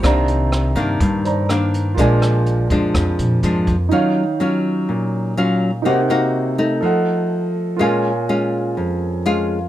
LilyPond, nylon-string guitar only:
\new Staff \with { instrumentName = "Nylon-string guitar" } { \time 4/4 \key bes \mixolydian \tempo 4 = 124 << { <ees bes d'>4. <ees bes d'>4. <ees bes d'>4 | <f aes d'>4. <f aes d'>4. <f aes d'>8 r8 | \key ees \minor <ges des' f'>8 r8 <ges des' f'>2 <ges des' f'>8 r8 | <bes ees' ges'>8 <bes ees' ges'>4 <a ees'>2 r8 |
<aes des' f'>8 r8 <aes des' f'>2 <aes des' f'>8 r8 | } \\ { c2 g,2 | bes,2 f,2 | ees2 bes,2 | c2 f2 |
bes,2 f,2 | } >> }